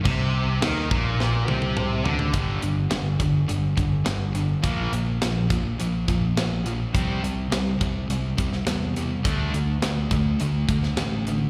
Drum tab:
CC |x---x-----------|----------------|----------------|----------------|
HH |----------------|x-x-x-x-x-x-x-x-|x-x-x-x-x-x-x-x-|x-x-x-x-x-x-x-x-|
SD |----o---o-------|----o-------o---|----o-------o---|----o------oo---|
T1 |----------oo----|----------------|----------------|----------------|
T2 |------------o---|----------------|----------------|----------------|
FT |--------------oo|----------------|----------------|----------------|
BD |o-----o---------|o-----o---o-----|o-----o---o-----|o-----o---o-----|

CC |----------------|
HH |x-x-x-x-x-x-x-x-|
SD |----o------oo---|
T1 |----------------|
T2 |----------------|
FT |----------------|
BD |o-----o---o-----|